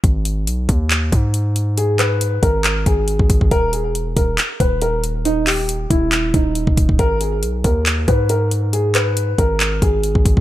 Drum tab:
HH |x-x-x-x-x-x-x-x-|x-x-x-x-x-x-x-x-|x-x-x-x-x-x-x-x-|x-o-x-x-x-x-x-x-|
CP |--------x-------|--x-----x-------|--------x-------|--x-----x-------|
BD |o-----o---o-----|------o---o--ooo|o-----o---o-----|------o---o--ooo|

HH |x-x-x-x-x-x-x-x-|x-x-x-x-x-x-x-x-|
CP |--------x-------|--x-----x-------|
BD |o-----o---o-----|------o---o--ooo|